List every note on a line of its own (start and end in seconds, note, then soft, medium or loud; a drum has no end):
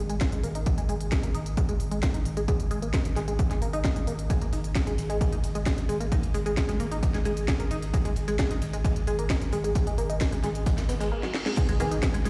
0.10 0.21 G#1 medium
0.10 0.15 G#3 loud
0.10 closed hi-hat medium
0.21 kick loud
0.21 snare loud
0.21 closed hi-hat medium
0.32 0.40 G#3 loud
0.32 closed hi-hat medium
0.43 0.55 G#1 loud
0.43 0.49 A#3 medium
0.43 open hi-hat loud
0.55 0.66 G#1 medium
0.55 0.60 D#4 medium
0.55 closed hi-hat medium
0.66 kick loud
0.66 closed hi-hat medium
0.78 0.81 G#3 loud
0.78 closed hi-hat medium
0.89 1.00 G#1 loud
0.89 0.94 G#3 loud
0.89 open hi-hat loud
1.01 1.12 G#1 medium
1.01 closed hi-hat medium
1.12 1.20 G#3 loud
1.12 kick loud
1.12 snare loud
1.12 closed hi-hat medium
1.23 1.29 A#3 medium
1.23 closed hi-hat medium
1.35 1.46 G#1 loud
1.35 1.40 D#4 medium
1.35 open hi-hat loud
1.46 1.57 G#1 medium
1.46 closed hi-hat medium
1.57 1.61 G#3 loud
1.57 kick loud
1.57 closed hi-hat medium
1.69 1.74 G#3 loud
1.69 closed hi-hat medium
1.80 1.91 G#1 loud
1.80 open hi-hat loud
1.91 2.03 G#1 medium
1.91 1.99 G#3 loud
1.91 closed hi-hat medium
2.03 2.08 A#3 medium
2.03 kick loud
2.03 snare loud
2.03 closed hi-hat medium
2.14 2.20 D#4 medium
2.14 closed hi-hat medium
2.25 2.37 G#1 loud
2.25 open hi-hat loud
2.37 2.48 G#1 medium
2.37 2.40 G#3 loud
2.37 closed hi-hat medium
2.48 2.54 G#3 loud
2.48 kick loud
2.48 closed hi-hat medium
2.60 closed hi-hat medium
2.71 2.82 G#1 loud
2.71 2.79 G#3 loud
2.71 open hi-hat loud
2.82 2.93 G#1 medium
2.82 2.88 A#3 medium
2.82 closed hi-hat medium
2.94 2.99 D#4 medium
2.94 kick loud
2.94 snare loud
2.94 closed hi-hat medium
3.05 closed hi-hat medium
3.16 3.27 G#1 loud
3.16 3.20 G#3 loud
3.16 snare soft
3.16 open hi-hat loud
3.28 3.39 G#1 medium
3.28 3.33 G#3 medium
3.28 closed hi-hat medium
3.39 kick loud
3.39 closed hi-hat medium
3.51 3.59 G#3 loud
3.51 snare soft
3.51 closed hi-hat medium
3.62 3.73 G#1 loud
3.62 3.70 A#3 medium
3.62 open hi-hat loud
3.73 3.84 G#1 medium
3.73 3.79 D#4 loud
3.73 open hi-hat medium
3.84 kick loud
3.84 snare loud
3.84 closed hi-hat medium
3.96 4.04 G#3 medium
3.96 closed hi-hat medium
4.07 4.18 G#1 loud
4.07 4.13 A#3 medium
4.07 open hi-hat loud
4.19 4.30 G#1 medium
4.19 closed hi-hat medium
4.30 4.38 G#3 loud
4.30 kick loud
4.30 closed hi-hat medium
4.30 ride medium
4.41 4.47 A#3 medium
4.41 closed hi-hat medium
4.41 ride soft
4.53 4.64 G#1 loud
4.53 4.58 D#4 medium
4.53 open hi-hat loud
4.53 ride medium
4.64 4.75 G#1 medium
4.64 closed hi-hat medium
4.75 4.79 G#3 loud
4.75 kick loud
4.75 snare loud
4.75 closed hi-hat medium
4.75 ride medium
4.87 4.92 G#3 loud
4.87 snare soft
4.87 closed hi-hat medium
4.98 5.09 G#1 loud
4.98 snare soft
4.98 open hi-hat loud
4.98 ride medium
5.10 5.21 G#1 medium
5.10 5.18 G#3 loud
5.10 closed hi-hat medium
5.21 5.26 A#3 medium
5.21 kick loud
5.21 closed hi-hat medium
5.21 ride medium
5.32 5.38 D#4 medium
5.32 closed hi-hat medium
5.43 5.55 G#1 loud
5.43 open hi-hat loud
5.43 ride medium
5.55 5.66 G#1 medium
5.55 5.58 G#3 loud
5.55 closed hi-hat medium
5.66 5.72 G#3 loud
5.66 kick loud
5.66 snare loud
5.66 closed hi-hat medium
5.66 ride medium
5.78 snare soft
5.78 closed hi-hat medium
5.89 6.00 G#1 loud
5.89 5.97 G#3 loud
5.89 open hi-hat loud
5.89 ride medium
6.00 6.12 G#1 medium
6.00 6.06 A#3 medium
6.00 closed hi-hat medium
6.12 6.17 D#4 medium
6.12 kick loud
6.12 closed hi-hat medium
6.12 ride medium
6.23 closed hi-hat medium
6.23 ride soft
6.34 6.45 G#1 loud
6.34 6.38 G#3 loud
6.34 open hi-hat loud
6.34 ride medium
6.46 6.57 G#1 medium
6.46 6.51 G#3 loud
6.46 closed hi-hat medium
6.57 kick loud
6.57 snare loud
6.57 closed hi-hat medium
6.57 ride medium
6.69 6.77 G#3 loud
6.69 snare soft
6.69 closed hi-hat medium
6.80 6.91 G#1 loud
6.80 6.85 A#3 medium
6.80 open hi-hat loud
6.80 ride medium
6.91 7.02 G#1 medium
6.91 6.97 D#4 medium
6.91 closed hi-hat medium
6.91 ride soft
7.03 kick loud
7.03 closed hi-hat medium
7.03 ride medium
7.14 7.17 G#3 loud
7.14 snare soft
7.14 closed hi-hat soft
7.25 7.36 G#1 loud
7.25 7.31 G#3 loud
7.25 open hi-hat loud
7.25 ride medium
7.37 7.48 G#1 medium
7.37 closed hi-hat medium
7.37 ride soft
7.48 7.56 G#3 loud
7.48 kick loud
7.48 snare loud
7.48 closed hi-hat medium
7.48 ride medium
7.60 7.65 A#3 medium
7.60 closed hi-hat soft
7.60 ride soft
7.71 7.82 G#1 loud
7.71 7.76 D#4 medium
7.71 open hi-hat loud
7.71 ride medium
7.82 7.93 G#1 medium
7.82 snare soft
7.82 closed hi-hat medium
7.94 7.97 G#3 loud
7.94 kick loud
7.94 closed hi-hat medium
7.94 ride medium
8.05 8.10 G#3 loud
8.05 closed hi-hat medium
8.05 ride soft
8.16 8.27 G#1 loud
8.16 open hi-hat loud
8.16 ride medium
8.28 8.39 G#1 medium
8.28 8.36 G#3 loud
8.28 closed hi-hat medium
8.39 8.44 A#3 medium
8.39 kick loud
8.39 snare loud
8.39 closed hi-hat medium
8.39 ride medium
8.50 8.56 D#4 medium
8.50 snare soft
8.50 closed hi-hat medium
8.62 8.73 G#1 loud
8.62 snare soft
8.62 open hi-hat loud
8.62 ride medium
8.73 8.84 G#1 medium
8.73 8.76 G#3 loud
8.73 closed hi-hat medium
8.84 8.90 G#3 loud
8.84 kick loud
8.84 closed hi-hat medium
8.84 ride loud
8.96 closed hi-hat medium
9.07 9.18 G#1 loud
9.07 9.15 G#3 loud
9.07 open hi-hat loud
9.07 ride medium
9.19 9.30 G#1 medium
9.19 9.24 A#3 medium
9.19 closed hi-hat medium
9.30 9.35 D#4 medium
9.30 kick loud
9.30 snare loud
9.30 closed hi-hat medium
9.30 ride medium
9.42 snare soft
9.42 closed hi-hat medium
9.52 9.64 G#1 loud
9.52 9.56 G#3 loud
9.52 open hi-hat loud
9.52 ride medium
9.64 9.75 G#1 medium
9.64 9.69 G#3 loud
9.64 closed hi-hat medium
9.75 kick loud
9.75 closed hi-hat medium
9.75 ride medium
9.87 9.95 G#3 loud
9.87 closed hi-hat medium
9.87 ride soft
9.98 10.09 G#1 loud
9.98 10.04 A#3 medium
9.98 open hi-hat loud
10.10 10.21 G#1 medium
10.10 10.15 D#4 medium
10.10 closed hi-hat medium
10.20 kick loud
10.20 snare loud
10.20 closed hi-hat medium
10.20 ride medium
10.32 10.35 G#3 loud
10.32 snare soft
10.32 closed hi-hat medium
10.43 10.55 G#1 loud
10.43 10.49 G#3 loud
10.43 snare soft
10.43 open hi-hat loud
10.43 ride medium
10.55 10.66 G#1 medium
10.55 closed hi-hat medium
10.55 ride soft
10.66 10.74 G#3 loud
10.66 kick loud
10.66 snare loud
10.66 closed hi-hat medium
10.66 ride medium
10.66 reverse cymbal medium
10.78 10.83 A#3 medium
10.78 snare loud
10.78 snare soft
10.78 closed hi-hat medium
10.78 ride medium
10.89 11.00 G#1 loud
10.89 10.94 B3 medium
10.89 snare loud
10.89 open hi-hat loud
10.89 ride medium
11.00 11.12 G#1 medium
11.00 11.08 G#3 loud
11.00 snare loud
11.00 open hi-hat medium
11.00 ride medium
11.12 11.20 A#3 medium
11.23 11.31 F#3 medium
11.23 snare medium
11.34 snare medium
11.46 11.51 G#3 medium
11.46 snare medium
11.57 11.73 D#3 medium
11.57 11.73 B3 medium
11.57 11.73 G#4 medium
11.57 kick loud
11.57 closed hi-hat medium
11.57 crash loud
11.57 ride medium
11.57 impact medium
11.69 11.77 G#3 loud
11.69 closed hi-hat medium
11.69 ride soft
11.80 11.91 G#1 loud
11.80 12.30 D#3 medium
11.80 11.85 A#3 medium
11.80 12.30 B3 medium
11.80 12.30 G#4 loud
11.80 open hi-hat loud
11.80 ride medium
11.91 12.02 G#1 medium
11.91 11.97 D#4 medium
11.91 closed hi-hat medium
12.03 kick loud
12.03 snare loud
12.03 closed hi-hat medium
12.03 ride medium
12.14 12.17 G#3 loud
12.14 snare soft
12.14 closed hi-hat medium
12.25 12.30 G#1 loud
12.25 12.30 G#3 loud
12.25 snare soft
12.25 open hi-hat loud
12.25 ride medium